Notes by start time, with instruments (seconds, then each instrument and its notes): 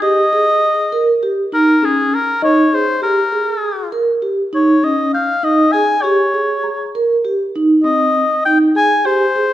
0.02 vibraphone G4, oboe D#5
0.33 vibraphone G#4
0.92 vibraphone A#4
1.23 vibraphone G4
1.52 vibraphone D#4, oboe A#4
1.82 vibraphone C#4, celesta G#4, oboe G#4
2.14 oboe A#4
2.42 vibraphone D#4, oboe C#5, celesta D#5
2.73 vibraphone G#4, oboe C5
3.02 vibraphone G4, oboe A#4
3.32 vibraphone G#4
3.92 vibraphone A#4
4.22 vibraphone G4
4.53 vibraphone D#4, oboe C#5
4.83 vibraphone C#4, oboe D#5
5.14 oboe F5, celesta G6
5.43 vibraphone D#4, oboe D#5
5.72 vibraphone G#4, oboe G#5
6.02 vibraphone G4, oboe C#5
6.34 vibraphone G#4
6.63 celesta A#5
6.95 vibraphone A#4
7.25 vibraphone G4
7.56 vibraphone D#4
7.84 vibraphone C4, oboe D#5
8.45 vibraphone D#4, oboe G5
8.75 vibraphone G#4, oboe G#5
9.05 vibraphone G4, oboe C5
9.36 vibraphone G#4